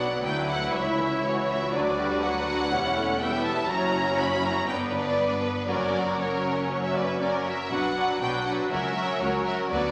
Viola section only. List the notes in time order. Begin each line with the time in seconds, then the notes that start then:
Already playing: F#3 B3
0.24 E4
0.74 F#3
0.99 E3
1.23 E3
1.73 F#3 D4
1.98 G3
2.23 F#3 D4
2.47 F#3
2.72 G3 C#4
2.97 A3
3.21 G3 B3
3.70 F#3 C#4
4.69 B3
5.68 F#3 C#4
6.19 F#3 C#4
7.21 F#3 C#4
7.71 F#3 D4
7.97 F#3 D4
8.23 F#3 D4
8.48 F#3 D4
8.72 F#3 C#4
8.97 F#3 C#4
9.22 F#3 C#4
9.47 F#3 C#4
9.71 F#3 B3